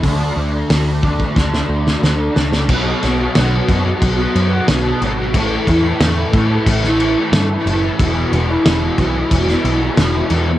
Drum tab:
CC |----------------|x-x-x-x-x-x-x-x-|x-x-x-x-x-x-x-x-|x-x-x-x-x-x-x-x-|
HH |o---o-----------|----------------|----------------|----------------|
SD |----o---oo-oo-oo|--o-o-------o---|----o----o--o---|----o----o--o---|
BD |o-----ooo-------|o-----o-o-------|o-o---o-o-------|o-----o-o-------|